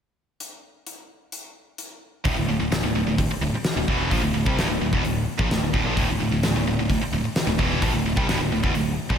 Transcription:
0.40 closed hi-hat
0.86 closed hi-hat
1.32 closed hi-hat
1.78 closed hi-hat
2.24 D1 D2 A2, kick, open hi-hat
2.37 D1 D2 A2
2.48 D1 D2 A2
2.60 D1 D2 A2
2.71 D1 D2 A2, snare, open hi-hat
2.83 D1 D2 A2
2.94 D1 D2 A2
3.05 D1 D2 A2
3.18 D1 D2 A2, kick, open hi-hat
3.30 muted picked electric bass stroke, muted distorted electric guitar stroke
3.41 D1 D2 A2
3.52 muted picked electric bass stroke, muted distorted electric guitar stroke
3.64 snare, open hi-hat
3.76 D1 D2 A2
3.88 E1 E2 B2 E3, kick
4.11 A#1 A#2 F3, kick, open hi-hat
4.22 D1 D2 A2
4.34 D1 D2 A2
4.46 C2 C3 G3, kick
4.58 D1 D2 A2, snare, open hi-hat
4.69 D1 D2 A2
4.81 D1 D2 A2
4.93 E1 E2 B2, kick
5.04 D1 D2 A2, open hi-hat
5.39 A#1 A#2 F3, kick
5.50 D1 D2 A2, snare, open hi-hat
5.74 D1 D2 A2, kick
5.85 A#1 A#2 F3
5.97 D1 D2 A2, kick, open hi-hat
6.09 D1 D2 A2
6.20 D1 D2 A2
6.31 D1 D2 A2
6.43 D1 D2 A2, snare, open hi-hat
6.55 D1 D2 A2
6.66 D1 D2 A2
6.78 D1 D2 A2
6.89 D1 D2 A2, kick, open hi-hat
7.01 muted picked electric bass stroke, muted distorted electric guitar stroke
7.12 D1 D2 A2
7.24 muted picked electric bass stroke, muted distorted electric guitar stroke
7.36 snare, open hi-hat
7.47 D1 D2 A2
7.58 E1 E2 B2 E3, kick
7.82 A#1 A#2 F3, kick, open hi-hat
7.94 D1 D2 A2
8.05 D1 D2 A2
8.16 C2 C3 G3, kick
8.28 D1 D2 A2, snare, open hi-hat
8.40 D1 D2 A2
8.52 D1 D2 A2
8.63 E1 E2 B2, kick
8.74 D1 D2 A2, open hi-hat
9.09 A#1 A#2 F3, kick

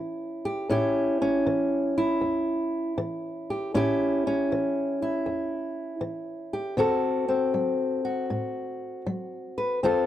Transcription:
Already playing: E3 C#4 E4 G4
0.45 G4
0.69 A2 C#4 E4 G4
1.22 C#4
1.46 E3
1.98 E4
2.21 E2
2.98 E3
3.50 G4
3.74 A2 C#4 E4 G4
4.27 C#4
4.52 E3
5.02 E4
5.26 E2
6.01 E3
6.53 G4
6.77 D3 C4 F#4 A4
7.28 C4
7.54 F#3
8.05 F#4
8.30 A2
9.06 F#3
9.58 B4
9.83 D3 C4 F4 A4

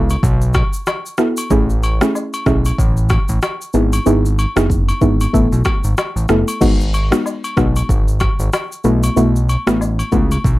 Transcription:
Already playing: C#2 B3 E4 F#4 A4
0.10 high agogo, shaker
0.23 B1, kick, shaker
0.41 shaker
0.54 kick, cross-stick, high agogo, shaker
0.73 shaker
0.87 cross-stick, high agogo, low woodblock, shaker
1.06 shaker
1.18 B3 E4 F#4 A4, cross-stick, shaker
1.37 high agogo, shaker
1.51 A1 A3 C#4 E4 G#4, kick, shaker
1.70 shaker
1.83 high agogo, shaker
2.01 A3 C#4 E4 G#4, cross-stick, shaker
2.15 low woodblock, shaker
2.34 high agogo, shaker
2.46 B1 A3 C#4 E4 G#4, kick, cross-stick, shaker
2.65 high agogo, shaker
2.78 A1, kick, shaker
2.97 shaker
3.09 kick, cross-stick, high agogo, shaker
3.29 A1, shaker
3.42 cross-stick, high agogo, low woodblock, shaker
3.61 shaker
3.73 G#1 B3 D#4 E4 G#4, shaker
3.93 high agogo, shaker
4.06 G#1 B3 D#4 E4 G#4, shaker
4.26 shaker
4.39 high agogo, shaker
4.56 F#1 B3 D#4 E4 G#4, cross-stick, shaker
4.70 kick, shaker
4.89 high agogo, shaker
5.01 G#1 B3 D#4 E4 G#4, kick, shaker
5.21 high agogo, shaker
5.33 A1 A3 B3 E4 A4, kick, shaker
5.52 B1, shaker
5.65 kick, cross-stick, high agogo, shaker
5.84 G#1, shaker
5.98 cross-stick, high agogo, low woodblock, shaker
6.16 A1, shaker
6.29 F#1 A3 B3 E4 A4, cross-stick, shaker
6.48 high agogo, shaker
6.61 G#1 G#3 B3 D#4 F#4, kick, crash, shaker
6.81 shaker
6.94 high agogo, shaker
7.11 G#3 B3 D#4 F#4, cross-stick, shaker
7.26 low woodblock, shaker
7.44 high agogo, shaker
7.57 B1 G#3 B3 D#4 F#4, kick, cross-stick, shaker
7.76 high agogo, shaker
7.89 G#1, kick, shaker
8.08 shaker
8.20 kick, cross-stick, high agogo, shaker
8.39 G#1, shaker
8.53 cross-stick, high agogo, low woodblock, shaker
8.72 shaker
8.84 B1 A3 B3 E4 F#4, shaker
9.03 high agogo, shaker
9.16 B1 A3 B3 E4 F#4, shaker
9.36 shaker
9.49 high agogo, shaker
9.67 A1 A3 B3 E4 F#4, cross-stick, shaker
9.81 low woodblock, shaker
9.99 high agogo, shaker
10.12 C#2 A3 B3 E4 F#4, kick, shaker
10.31 high agogo, shaker
10.44 B1, kick, shaker

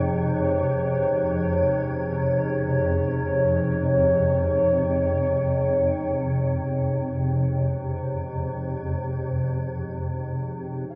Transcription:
Already playing: F2 C3 F3 D#4 G#4 C#5
10.90 F5

